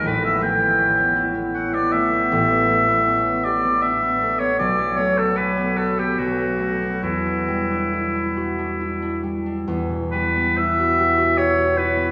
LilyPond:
<<
  \new Staff \with { instrumentName = "Oboe" } { \time 3/4 \key e \dorian \tempo 4 = 76 b'16 e''16 g''4~ g''16 r16 fis''16 d''16 e''8~ | e''4. d''8 e''8. cis''16 | d''8 cis''16 a'16 b'8 a'16 g'16 fis'4 | e'2~ e'8 r8 |
r8 b'8 e''4 cis''8 b'8 | }
  \new Staff \with { instrumentName = "Harp" } { \time 3/4 \key e \dorian a,,16 b16 a16 b16 cis'16 b16 e'16 b16 cis'16 b16 a16 b16 | a,,16 b16 a16 b16 cis'16 b16 g'16 b16 d'16 b16 a16 b16 | b,,16 b16 a16 b16 cis'16 b16 fis'16 b16 b,,16 b16 a16 b16 | e,16 d'16 g16 d'16 e'16 d'16 fis'16 d'16 e'16 d'16 g16 d'16 |
e,16 b,16 g16 b16 e'16 fis'16 g'16 fis'16 g'16 fis'16 e'16 b16 | }
>>